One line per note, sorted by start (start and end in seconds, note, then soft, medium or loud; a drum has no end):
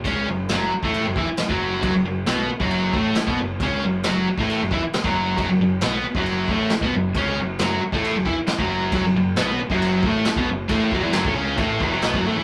0.04 0.26 C#2 medium
0.04 0.27 C#3 loud
0.04 0.28 C#4 loud
0.04 kick loud
0.04 crash medium
0.28 0.49 F#1 medium
0.28 0.46 F#2 medium
0.49 0.71 F#1 medium
0.49 0.72 F#2 medium
0.49 0.73 F#3 loud
0.49 snare loud
0.49 crash medium
0.73 muted overdriven electric guitar stroke medium
0.73 muted picked electric bass stroke soft
0.83 1.04 A1 loud
0.83 1.05 A2 medium
0.83 1.06 A3 loud
0.83 kick loud
0.94 crash medium
1.06 1.16 F#1 medium
1.06 1.17 F#2 medium
1.16 1.27 E2 loud
1.16 1.27 E3 loud
1.16 1.28 E4 loud
1.16 kick loud
1.28 muted overdriven electric guitar stroke medium
1.28 muted picked electric bass stroke soft
1.37 muted picked electric bass stroke soft
1.37 muted overdriven electric guitar stroke medium
1.37 snare loud
1.37 crash medium
1.49 1.81 F#1 loud
1.49 1.80 F#2 loud
1.49 1.82 F#3 loud
1.49 kick loud
1.82 1.94 F#1 medium
1.82 1.93 F#2 loud
1.82 1.94 F#3 loud
1.82 kick loud
1.82 crash medium
1.94 2.05 F#1 medium
1.94 2.05 F#2 medium
2.06 2.26 F#1 medium
2.06 2.23 F#2 medium
2.26 2.49 B1 medium
2.26 2.49 B2 loud
2.26 2.50 B3 loud
2.26 snare loud
2.26 crash medium
2.49 muted overdriven electric guitar stroke medium
2.49 muted picked electric bass stroke soft
2.60 2.92 F#1 medium
2.60 2.93 F#2 loud
2.60 2.94 F#3 loud
2.60 kick loud
2.71 crash medium
2.93 3.15 A1 loud
2.93 3.15 A2 medium
2.93 3.16 A3 loud
2.93 kick loud
3.15 muted overdriven electric guitar stroke medium
3.15 muted picked electric bass stroke soft
3.15 snare loud
3.15 crash medium
3.27 3.38 B1 loud
3.27 3.38 B2 loud
3.27 3.38 B3 loud
3.27 kick loud
3.39 3.60 F#1 medium
3.39 3.56 F#2 medium
3.60 3.81 C#2 loud
3.60 3.83 C#3 loud
3.60 3.84 C#4 loud
3.60 kick loud
3.60 crash medium
3.83 4.04 F#1 medium
3.83 4.01 F#2 medium
4.03 4.27 F#1 medium
4.03 4.27 F#2 medium
4.03 4.28 F#3 loud
4.03 snare loud
4.03 crash medium
4.29 muted overdriven electric guitar stroke medium
4.29 muted picked electric bass stroke soft
4.38 4.59 A1 medium
4.38 4.60 A2 medium
4.38 4.61 A3 loud
4.38 kick loud
4.50 crash medium
4.61 4.71 F#1 medium
4.61 4.72 F#2 medium
4.71 4.82 E2 loud
4.71 4.82 E3 medium
4.71 4.83 E4 loud
4.71 kick loud
4.83 muted overdriven electric guitar stroke medium
4.83 muted picked electric bass stroke soft
4.93 muted overdriven electric guitar stroke medium
4.93 muted picked electric bass stroke soft
4.93 snare loud
4.93 crash medium
5.04 5.36 F#1 medium
5.04 5.35 F#2 medium
5.04 5.37 F#3 loud
5.04 kick loud
5.37 5.48 F#1 loud
5.37 5.48 F#2 loud
5.37 5.49 F#3 loud
5.37 kick loud
5.37 crash medium
5.49 5.60 F#1 medium
5.49 5.60 F#2 medium
5.60 5.81 F#1 medium
5.60 5.79 F#2 medium
5.81 6.03 B1 medium
5.81 6.04 B2 medium
5.81 6.05 B3 loud
5.81 snare loud
5.81 crash medium
6.05 muted picked electric bass stroke soft
6.05 muted overdriven electric guitar stroke medium
6.15 6.47 F#1 loud
6.15 6.49 F#2 loud
6.15 6.49 F#3 loud
6.15 kick loud
6.26 crash medium
6.48 6.70 A1 medium
6.48 6.70 A2 medium
6.48 6.71 A3 loud
6.48 kick loud
6.70 muted picked electric bass stroke soft
6.70 muted overdriven electric guitar stroke medium
6.70 snare loud
6.70 crash medium
6.81 6.92 B1 loud
6.81 6.93 B2 medium
6.81 6.94 B3 loud
6.81 kick loud
6.93 7.14 F#1 medium
6.93 7.12 F#2 medium
7.15 7.36 C#2 loud
7.15 7.38 C#3 loud
7.15 7.38 C#4 loud
7.15 kick loud
7.15 crash medium
7.38 7.59 F#1 medium
7.38 7.57 F#2 medium
7.59 7.81 F#1 loud
7.59 7.81 F#2 medium
7.59 7.82 F#3 loud
7.59 snare loud
7.59 crash medium
7.82 muted picked electric bass stroke soft
7.82 muted overdriven electric guitar stroke medium
7.92 8.14 A1 loud
7.92 8.15 A2 medium
7.92 8.16 A3 loud
7.92 kick loud
8.04 crash medium
8.15 8.26 F#1 medium
8.15 8.26 F#2 medium
8.25 8.37 E2 loud
8.25 8.36 E3 medium
8.25 8.37 E4 loud
8.25 kick loud
8.37 muted overdriven electric guitar stroke medium
8.37 muted picked electric bass stroke soft
8.47 muted overdriven electric guitar stroke medium
8.47 muted picked electric bass stroke soft
8.47 snare loud
8.47 crash medium
8.59 8.91 F#1 medium
8.59 8.91 F#2 medium
8.59 8.93 F#3 loud
8.59 kick loud
8.92 9.03 F#1 medium
8.92 9.03 F#2 loud
8.92 9.04 F#3 loud
8.92 kick loud
8.92 crash medium
9.04 9.15 F#1 medium
9.04 9.15 F#2 medium
9.16 9.37 F#1 medium
9.16 9.34 F#2 medium
9.36 9.58 B1 loud
9.36 9.59 B2 medium
9.36 9.60 B3 loud
9.36 snare loud
9.36 crash medium
9.60 muted picked electric bass stroke soft
9.60 muted overdriven electric guitar stroke medium
9.70 10.02 F#1 loud
9.70 10.03 F#2 loud
9.70 10.04 F#3 loud
9.70 kick loud
9.82 crash medium
10.03 10.25 A1 loud
10.03 10.26 A2 medium
10.03 10.27 A3 loud
10.03 kick loud
10.25 muted picked electric bass stroke soft
10.25 muted overdriven electric guitar stroke medium
10.25 snare loud
10.25 crash medium
10.36 10.48 B1 loud
10.36 10.48 B2 loud
10.36 10.48 B3 loud
10.36 kick loud
10.47 10.69 F#1 medium
10.47 10.66 F#2 medium
10.68 10.91 A1 medium
10.68 10.91 A2 loud
10.68 10.92 A3 loud
10.68 kick loud
10.68 crash medium
10.92 11.03 F#1 loud
10.92 11.01 F#2 medium
10.92 11.03 F#3 loud
10.92 kick loud
11.02 11.14 E1 loud
11.02 11.12 E2 medium
11.02 11.13 E3 loud
11.12 11.24 F#1 medium
11.12 11.24 F#2 medium
11.12 11.25 F#3 loud
11.12 snare loud
11.12 crash medium
11.23 11.36 A1 loud
11.23 11.33 A2 loud
11.23 11.35 A3 medium
11.23 kick loud
11.34 11.58 C#2 medium
11.34 11.56 C#3 loud
11.34 11.57 C#4 loud
11.57 11.80 A1 loud
11.57 11.80 A2 medium
11.57 11.80 A3 loud
11.57 kick loud
11.57 crash medium
11.80 11.92 E1 loud
11.80 11.91 E2 loud
11.80 11.92 E3 loud
11.80 kick loud
11.91 12.04 F#1 medium
11.91 12.03 F#2 medium
11.91 12.03 F#3 loud
12.02 12.14 B1 medium
12.02 12.14 B2 medium
12.02 12.15 B3 medium
12.02 snare loud
12.02 crash medium
12.13 12.25 F#1 loud
12.13 12.25 F#2 loud
12.13 12.26 F#3 loud
12.13 kick loud
12.24 12.37 A1 loud
12.24 12.35 A2 loud
12.24 12.37 A3 loud
12.36 12.44 E2 loud
12.36 12.44 E3 medium
12.36 12.44 E4 loud